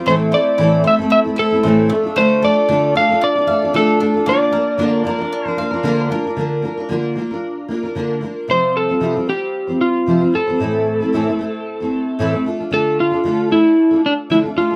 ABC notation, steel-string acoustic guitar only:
X:1
M:4/4
L:1/16
Q:"Swing 16ths" 1/4=114
K:Dm
V:1 name="Steel-string acoustic guitar"
[A,,E,A,CEA]2 [A,CEA]2 [A,,E,A,CEA]2 [A,CEA] [A,CEA]2 [A,CEA] [A,CEA] [A,CEA] [A,,E,A,CEA]2 [A,DFA] [DFA] | [D,A,DFA]2 [A,DFA]2 [D,A,DFA]2 [A,DFA] [DFA]2 [DFA] [A,DFA] [DFA] [D,A,DFA]2 [A,DFA] [DFA] | [D,B,DFB]2 [B,DFB]2 [D,B,DFB]2 [B,DFB] [DFB]2 [DFB] [B,DFB] [DFB] [D,B,DFB]2 [B,DFB] [DFB] | [D,B,DFB]2 [B,DFB] [DFB] [D,B,DFB]2 [B,DFB] [DFB]3 [B,DFB] [DFB] [D,B,DFB]2 [B,DFB]2 |
[C,F,G,CFc]3 [G,CFc] [C,F,G,CFc] [G,CFc] [G,CFc]3 [G,CFc]3 [C,F,G,CFc] [G,CFc] [G,CFc] [G,CFc] | [A,,E,A,CEA]3 [A,CEA] [A,,E,A,CEA] [A,CEA] [A,CEA]3 [A,CEA]3 [A,,E,A,CEA] [A,CEA] [A,DFA] [DFA] | [D,A,DFA]3 [DFA] [D,A,DFA]2 [A,DA]3 [DFA]3 [D,A,DFA] [DFA] [A,DFA] [FA] |]